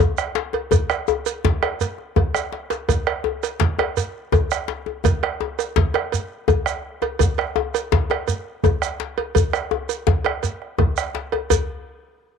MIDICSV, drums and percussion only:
0, 0, Header, 1, 5, 480
1, 0, Start_track
1, 0, Tempo, 359712
1, 949, Time_signature, 12, 3, 24, 8
1, 16523, End_track
2, 0, Start_track
2, 0, Title_t, "Bombo"
2, 4, Note_on_c, 9, 43, 127
2, 137, Note_off_c, 9, 43, 0
2, 244, Note_on_c, 9, 37, 81
2, 378, Note_off_c, 9, 37, 0
2, 958, Note_on_c, 9, 43, 101
2, 1091, Note_off_c, 9, 43, 0
2, 1196, Note_on_c, 9, 37, 93
2, 1330, Note_off_c, 9, 37, 0
2, 1454, Note_on_c, 9, 37, 33
2, 1587, Note_off_c, 9, 37, 0
2, 1932, Note_on_c, 9, 37, 37
2, 1932, Note_on_c, 9, 43, 111
2, 2065, Note_off_c, 9, 37, 0
2, 2065, Note_off_c, 9, 43, 0
2, 2170, Note_on_c, 9, 37, 84
2, 2303, Note_off_c, 9, 37, 0
2, 2890, Note_on_c, 9, 43, 119
2, 3023, Note_off_c, 9, 43, 0
2, 3129, Note_on_c, 9, 37, 88
2, 3263, Note_off_c, 9, 37, 0
2, 3380, Note_on_c, 9, 37, 34
2, 3514, Note_off_c, 9, 37, 0
2, 3854, Note_on_c, 9, 37, 31
2, 3854, Note_on_c, 9, 43, 99
2, 3988, Note_off_c, 9, 37, 0
2, 3988, Note_off_c, 9, 43, 0
2, 4095, Note_on_c, 9, 37, 90
2, 4229, Note_off_c, 9, 37, 0
2, 4577, Note_on_c, 9, 37, 33
2, 4711, Note_off_c, 9, 37, 0
2, 4817, Note_on_c, 9, 43, 108
2, 4950, Note_off_c, 9, 43, 0
2, 5060, Note_on_c, 9, 37, 80
2, 5193, Note_off_c, 9, 37, 0
2, 5778, Note_on_c, 9, 43, 127
2, 5912, Note_off_c, 9, 43, 0
2, 6028, Note_on_c, 9, 37, 87
2, 6161, Note_off_c, 9, 37, 0
2, 6735, Note_on_c, 9, 37, 34
2, 6735, Note_on_c, 9, 43, 115
2, 6869, Note_off_c, 9, 37, 0
2, 6869, Note_off_c, 9, 43, 0
2, 6986, Note_on_c, 9, 37, 90
2, 7119, Note_off_c, 9, 37, 0
2, 7469, Note_on_c, 9, 37, 32
2, 7603, Note_off_c, 9, 37, 0
2, 7708, Note_on_c, 9, 43, 108
2, 7841, Note_off_c, 9, 43, 0
2, 7945, Note_on_c, 9, 37, 83
2, 8079, Note_off_c, 9, 37, 0
2, 8654, Note_on_c, 9, 43, 124
2, 8788, Note_off_c, 9, 43, 0
2, 8886, Note_on_c, 9, 37, 82
2, 9019, Note_off_c, 9, 37, 0
2, 9611, Note_on_c, 9, 37, 30
2, 9611, Note_on_c, 9, 43, 93
2, 9745, Note_off_c, 9, 37, 0
2, 9745, Note_off_c, 9, 43, 0
2, 9860, Note_on_c, 9, 37, 74
2, 9994, Note_off_c, 9, 37, 0
2, 10329, Note_on_c, 9, 37, 29
2, 10463, Note_off_c, 9, 37, 0
2, 10577, Note_on_c, 9, 43, 114
2, 10711, Note_off_c, 9, 43, 0
2, 10824, Note_on_c, 9, 37, 78
2, 10957, Note_off_c, 9, 37, 0
2, 11522, Note_on_c, 9, 43, 115
2, 11656, Note_off_c, 9, 43, 0
2, 11767, Note_on_c, 9, 37, 79
2, 11900, Note_off_c, 9, 37, 0
2, 12488, Note_on_c, 9, 43, 102
2, 12622, Note_off_c, 9, 43, 0
2, 12723, Note_on_c, 9, 37, 88
2, 12856, Note_off_c, 9, 37, 0
2, 13444, Note_on_c, 9, 43, 109
2, 13577, Note_off_c, 9, 43, 0
2, 13693, Note_on_c, 9, 37, 90
2, 13826, Note_off_c, 9, 37, 0
2, 14169, Note_on_c, 9, 37, 32
2, 14302, Note_off_c, 9, 37, 0
2, 14407, Note_on_c, 9, 37, 37
2, 14407, Note_on_c, 9, 43, 114
2, 14540, Note_off_c, 9, 37, 0
2, 14540, Note_off_c, 9, 43, 0
2, 14648, Note_on_c, 9, 37, 79
2, 14782, Note_off_c, 9, 37, 0
2, 14886, Note_on_c, 9, 37, 27
2, 15019, Note_off_c, 9, 37, 0
2, 15114, Note_on_c, 9, 37, 31
2, 15247, Note_off_c, 9, 37, 0
2, 15358, Note_on_c, 9, 43, 89
2, 15492, Note_off_c, 9, 43, 0
2, 16523, End_track
3, 0, Start_track
3, 0, Title_t, "Djembe"
3, 470, Note_on_c, 9, 62, 80
3, 604, Note_off_c, 9, 62, 0
3, 709, Note_on_c, 9, 63, 64
3, 843, Note_off_c, 9, 63, 0
3, 947, Note_on_c, 9, 64, 79
3, 1080, Note_off_c, 9, 64, 0
3, 1442, Note_on_c, 9, 63, 85
3, 1575, Note_off_c, 9, 63, 0
3, 1930, Note_on_c, 9, 62, 79
3, 1930, Note_on_c, 9, 64, 80
3, 2063, Note_off_c, 9, 62, 0
3, 2063, Note_off_c, 9, 64, 0
3, 2168, Note_on_c, 9, 63, 55
3, 2302, Note_off_c, 9, 63, 0
3, 2645, Note_on_c, 9, 62, 27
3, 2778, Note_off_c, 9, 62, 0
3, 2886, Note_on_c, 9, 62, 27
3, 2886, Note_on_c, 9, 63, 84
3, 2886, Note_on_c, 9, 64, 80
3, 3019, Note_off_c, 9, 62, 0
3, 3019, Note_off_c, 9, 63, 0
3, 3019, Note_off_c, 9, 64, 0
3, 3128, Note_on_c, 9, 64, 48
3, 3262, Note_off_c, 9, 64, 0
3, 3368, Note_on_c, 9, 62, 52
3, 3502, Note_off_c, 9, 62, 0
3, 3608, Note_on_c, 9, 62, 68
3, 3742, Note_off_c, 9, 62, 0
3, 3850, Note_on_c, 9, 62, 25
3, 3850, Note_on_c, 9, 64, 81
3, 3983, Note_off_c, 9, 62, 0
3, 3983, Note_off_c, 9, 64, 0
3, 4324, Note_on_c, 9, 63, 78
3, 4458, Note_off_c, 9, 63, 0
3, 4799, Note_on_c, 9, 62, 85
3, 4933, Note_off_c, 9, 62, 0
3, 5051, Note_on_c, 9, 63, 60
3, 5185, Note_off_c, 9, 63, 0
3, 5770, Note_on_c, 9, 63, 82
3, 5770, Note_on_c, 9, 64, 79
3, 5903, Note_off_c, 9, 63, 0
3, 5903, Note_off_c, 9, 64, 0
3, 6247, Note_on_c, 9, 62, 71
3, 6381, Note_off_c, 9, 62, 0
3, 6489, Note_on_c, 9, 63, 62
3, 6623, Note_off_c, 9, 63, 0
3, 6725, Note_on_c, 9, 62, 25
3, 6725, Note_on_c, 9, 64, 81
3, 6858, Note_off_c, 9, 62, 0
3, 6858, Note_off_c, 9, 64, 0
3, 7213, Note_on_c, 9, 63, 80
3, 7346, Note_off_c, 9, 63, 0
3, 7687, Note_on_c, 9, 62, 84
3, 7687, Note_on_c, 9, 64, 77
3, 7820, Note_off_c, 9, 62, 0
3, 7820, Note_off_c, 9, 64, 0
3, 7927, Note_on_c, 9, 63, 69
3, 8061, Note_off_c, 9, 63, 0
3, 8645, Note_on_c, 9, 63, 87
3, 8645, Note_on_c, 9, 64, 92
3, 8779, Note_off_c, 9, 63, 0
3, 8779, Note_off_c, 9, 64, 0
3, 9365, Note_on_c, 9, 63, 72
3, 9499, Note_off_c, 9, 63, 0
3, 9604, Note_on_c, 9, 62, 32
3, 9604, Note_on_c, 9, 64, 94
3, 9737, Note_off_c, 9, 62, 0
3, 9737, Note_off_c, 9, 64, 0
3, 10084, Note_on_c, 9, 63, 94
3, 10218, Note_off_c, 9, 63, 0
3, 10570, Note_on_c, 9, 62, 89
3, 10570, Note_on_c, 9, 64, 78
3, 10703, Note_off_c, 9, 62, 0
3, 10703, Note_off_c, 9, 64, 0
3, 10807, Note_on_c, 9, 63, 66
3, 10940, Note_off_c, 9, 63, 0
3, 11526, Note_on_c, 9, 63, 78
3, 11526, Note_on_c, 9, 64, 79
3, 11659, Note_off_c, 9, 63, 0
3, 11659, Note_off_c, 9, 64, 0
3, 12007, Note_on_c, 9, 62, 63
3, 12141, Note_off_c, 9, 62, 0
3, 12246, Note_on_c, 9, 63, 52
3, 12379, Note_off_c, 9, 63, 0
3, 12483, Note_on_c, 9, 64, 74
3, 12616, Note_off_c, 9, 64, 0
3, 12719, Note_on_c, 9, 62, 22
3, 12852, Note_off_c, 9, 62, 0
3, 12959, Note_on_c, 9, 62, 22
3, 12959, Note_on_c, 9, 63, 80
3, 13093, Note_off_c, 9, 62, 0
3, 13093, Note_off_c, 9, 63, 0
3, 13199, Note_on_c, 9, 62, 24
3, 13332, Note_off_c, 9, 62, 0
3, 13436, Note_on_c, 9, 62, 70
3, 13436, Note_on_c, 9, 64, 78
3, 13569, Note_off_c, 9, 62, 0
3, 13569, Note_off_c, 9, 64, 0
3, 13682, Note_on_c, 9, 63, 59
3, 13815, Note_off_c, 9, 63, 0
3, 13922, Note_on_c, 9, 62, 28
3, 14055, Note_off_c, 9, 62, 0
3, 14392, Note_on_c, 9, 62, 26
3, 14392, Note_on_c, 9, 63, 81
3, 14392, Note_on_c, 9, 64, 81
3, 14525, Note_off_c, 9, 62, 0
3, 14525, Note_off_c, 9, 63, 0
3, 14525, Note_off_c, 9, 64, 0
3, 14874, Note_on_c, 9, 62, 71
3, 15008, Note_off_c, 9, 62, 0
3, 15119, Note_on_c, 9, 63, 59
3, 15253, Note_off_c, 9, 63, 0
3, 15351, Note_on_c, 9, 64, 93
3, 15485, Note_off_c, 9, 64, 0
3, 16523, End_track
4, 0, Start_track
4, 0, Title_t, "Shekere"
4, 0, Note_on_c, 9, 82, 21
4, 134, Note_off_c, 9, 82, 0
4, 236, Note_on_c, 9, 82, 47
4, 369, Note_off_c, 9, 82, 0
4, 964, Note_on_c, 9, 82, 70
4, 1097, Note_off_c, 9, 82, 0
4, 1203, Note_on_c, 9, 82, 21
4, 1336, Note_off_c, 9, 82, 0
4, 1436, Note_on_c, 9, 82, 21
4, 1570, Note_off_c, 9, 82, 0
4, 1682, Note_on_c, 9, 82, 52
4, 1816, Note_off_c, 9, 82, 0
4, 2412, Note_on_c, 9, 82, 63
4, 2545, Note_off_c, 9, 82, 0
4, 3144, Note_on_c, 9, 82, 54
4, 3277, Note_off_c, 9, 82, 0
4, 3622, Note_on_c, 9, 82, 19
4, 3756, Note_off_c, 9, 82, 0
4, 3866, Note_on_c, 9, 82, 67
4, 3999, Note_off_c, 9, 82, 0
4, 4582, Note_on_c, 9, 82, 47
4, 4716, Note_off_c, 9, 82, 0
4, 5297, Note_on_c, 9, 82, 66
4, 5431, Note_off_c, 9, 82, 0
4, 5785, Note_on_c, 9, 82, 21
4, 5918, Note_off_c, 9, 82, 0
4, 6019, Note_on_c, 9, 82, 46
4, 6153, Note_off_c, 9, 82, 0
4, 6742, Note_on_c, 9, 82, 66
4, 6875, Note_off_c, 9, 82, 0
4, 7466, Note_on_c, 9, 82, 49
4, 7599, Note_off_c, 9, 82, 0
4, 8188, Note_on_c, 9, 82, 65
4, 8322, Note_off_c, 9, 82, 0
4, 8661, Note_on_c, 9, 82, 21
4, 8794, Note_off_c, 9, 82, 0
4, 8903, Note_on_c, 9, 82, 50
4, 9036, Note_off_c, 9, 82, 0
4, 9620, Note_on_c, 9, 82, 78
4, 9753, Note_off_c, 9, 82, 0
4, 10343, Note_on_c, 9, 82, 53
4, 10477, Note_off_c, 9, 82, 0
4, 11053, Note_on_c, 9, 82, 71
4, 11186, Note_off_c, 9, 82, 0
4, 11532, Note_on_c, 9, 82, 21
4, 11666, Note_off_c, 9, 82, 0
4, 11778, Note_on_c, 9, 82, 53
4, 11911, Note_off_c, 9, 82, 0
4, 12496, Note_on_c, 9, 82, 67
4, 12630, Note_off_c, 9, 82, 0
4, 12736, Note_on_c, 9, 82, 23
4, 12870, Note_off_c, 9, 82, 0
4, 13206, Note_on_c, 9, 82, 51
4, 13339, Note_off_c, 9, 82, 0
4, 13927, Note_on_c, 9, 82, 63
4, 14060, Note_off_c, 9, 82, 0
4, 14638, Note_on_c, 9, 82, 54
4, 14771, Note_off_c, 9, 82, 0
4, 15362, Note_on_c, 9, 82, 90
4, 15495, Note_off_c, 9, 82, 0
4, 16523, End_track
5, 0, Start_track
5, 0, Title_t, "Drums"
5, 0, Note_on_c, 9, 56, 43
5, 127, Note_off_c, 9, 56, 0
5, 721, Note_on_c, 9, 56, 47
5, 854, Note_off_c, 9, 56, 0
5, 956, Note_on_c, 9, 56, 54
5, 1089, Note_off_c, 9, 56, 0
5, 1205, Note_on_c, 9, 56, 46
5, 1339, Note_off_c, 9, 56, 0
5, 1684, Note_on_c, 9, 56, 51
5, 1818, Note_off_c, 9, 56, 0
5, 2173, Note_on_c, 9, 56, 50
5, 2307, Note_off_c, 9, 56, 0
5, 2417, Note_on_c, 9, 56, 50
5, 2550, Note_off_c, 9, 56, 0
5, 2901, Note_on_c, 9, 56, 41
5, 3034, Note_off_c, 9, 56, 0
5, 3605, Note_on_c, 9, 56, 48
5, 3739, Note_off_c, 9, 56, 0
5, 3853, Note_on_c, 9, 56, 60
5, 3986, Note_off_c, 9, 56, 0
5, 4098, Note_on_c, 9, 56, 52
5, 4232, Note_off_c, 9, 56, 0
5, 4582, Note_on_c, 9, 56, 55
5, 4715, Note_off_c, 9, 56, 0
5, 5065, Note_on_c, 9, 56, 57
5, 5198, Note_off_c, 9, 56, 0
5, 5299, Note_on_c, 9, 56, 55
5, 5432, Note_off_c, 9, 56, 0
5, 5776, Note_on_c, 9, 56, 46
5, 5910, Note_off_c, 9, 56, 0
5, 6737, Note_on_c, 9, 56, 65
5, 6871, Note_off_c, 9, 56, 0
5, 6979, Note_on_c, 9, 56, 52
5, 7113, Note_off_c, 9, 56, 0
5, 7456, Note_on_c, 9, 56, 55
5, 7590, Note_off_c, 9, 56, 0
5, 7930, Note_on_c, 9, 56, 62
5, 8064, Note_off_c, 9, 56, 0
5, 8172, Note_on_c, 9, 56, 53
5, 8305, Note_off_c, 9, 56, 0
5, 8654, Note_on_c, 9, 56, 49
5, 8787, Note_off_c, 9, 56, 0
5, 9372, Note_on_c, 9, 56, 54
5, 9505, Note_off_c, 9, 56, 0
5, 9598, Note_on_c, 9, 56, 63
5, 9732, Note_off_c, 9, 56, 0
5, 9850, Note_on_c, 9, 56, 48
5, 9983, Note_off_c, 9, 56, 0
5, 10336, Note_on_c, 9, 56, 57
5, 10470, Note_off_c, 9, 56, 0
5, 10818, Note_on_c, 9, 56, 51
5, 10951, Note_off_c, 9, 56, 0
5, 11043, Note_on_c, 9, 56, 49
5, 11176, Note_off_c, 9, 56, 0
5, 11535, Note_on_c, 9, 56, 46
5, 11669, Note_off_c, 9, 56, 0
5, 12245, Note_on_c, 9, 56, 49
5, 12378, Note_off_c, 9, 56, 0
5, 12475, Note_on_c, 9, 56, 54
5, 12608, Note_off_c, 9, 56, 0
5, 12723, Note_on_c, 9, 56, 44
5, 12856, Note_off_c, 9, 56, 0
5, 13200, Note_on_c, 9, 56, 44
5, 13333, Note_off_c, 9, 56, 0
5, 13672, Note_on_c, 9, 56, 49
5, 13805, Note_off_c, 9, 56, 0
5, 13917, Note_on_c, 9, 56, 43
5, 14050, Note_off_c, 9, 56, 0
5, 14393, Note_on_c, 9, 56, 42
5, 14527, Note_off_c, 9, 56, 0
5, 15110, Note_on_c, 9, 56, 49
5, 15243, Note_off_c, 9, 56, 0
5, 15349, Note_on_c, 9, 56, 78
5, 15482, Note_off_c, 9, 56, 0
5, 16523, End_track
0, 0, End_of_file